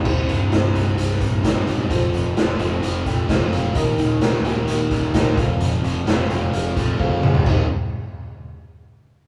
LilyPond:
<<
  \new Staff \with { instrumentName = "Grand piano" } { \time 4/4 \key c \dorian \tempo 4 = 130 << { r1 | r2 r8 g''8 f''4 | r1 | r1 |
r1 | } \\ { <ees' g' c''>4 <ees' g' c''>8 <ees' g' c''>8 <ees' g' c''>4 <ees' g' ees''>4 | <f' a' c''>4 <f' a' d''>8 <f' a' ees''>8 <f' a' c''>4 <f' a' c''>4 | <g' bes' ees''>4 <g' bes' ees''>8 <g' bes' ees''>8 <g' bes' ees''>4 <g' bes' ees''>8 <a' c'' f''>8~ | <a' c'' f''>8 r8 <a' c'' f''>8 <a' c'' f''>8 <a' c'' f''>4 <a' c'' f''>4 |
<g' c'' ees''>8 r2. r8 | } >> }
  \new Staff \with { instrumentName = "Overdriven electric guitar" } { \clef bass \time 4/4 \key c \dorian c,8 g,8 c8 g8 g,8 c8 ees'8 g8 | f,8 f8 a8 c'8 f8 a8 f'8 c'8 | ees,8 ees8 g8 bes8 ees8 g8 ees'8 f,8 | f,8 f8 a8 c'8 f8 a8 f'8 c'8 |
<c, g, c g ees'>8 r2. r8 | }
  \new Staff \with { instrumentName = "Distorted electric guitar" } { \clef bass \time 4/4 \key c \dorian <c, g, c>4. <c, g, c>4. <c, g, c>4 | <f, c f>4. <f, c f>4. <f, c f>4 | <ees, bes, ees>4. <ees, bes, ees>4. <ees, bes, ees>8 <f, c f>8~ | <f, c f>4 <f, c f>4. <f, c f>4 r8 |
<c, g, c>8 r2. r8 | }
  \new Staff \with { instrumentName = "Fingered electric bass" } { \clef bass \time 4/4 \key c \dorian c,,8 c,,8 c,,8 c,,8 c,,4 c,,8 e,,8 | f,,8 f,,8 f,,8 f,,8 f,,8 f,8 f,8 f,,8 | ees,,8 ees,,8 ees,,8 ees,,8 ees,,4 e,,8 f,,8 | f,,8 f,,8 f,,8 f,,8 f,,8 f,8 f,8 f,,8 |
c,,8 r2. r8 | }
  \new DrumStaff \with { instrumentName = "Drums" } \drummode { \time 4/4 <cymc bd>8 hh8 <hh sn>8 hh8 hh16 sn16 <hh bd>8 <hh bd sn>8 hh8 | <hh bd>8 hh8 <hh sn>8 hh8 hh8 <hh bd>8 <hh bd sn>8 hh8 | <hh bd>8 hh8 <hh sn>8 hh8 hh8 <hh bd>8 <hh bd sn>8 <hh bd>8 | hh8 hh8 <hh sn>8 hh8 hh8 <hh bd>8 <bd tommh>8 toml16 tomfh16 |
<cymc bd>4 r4 r4 r4 | }
>>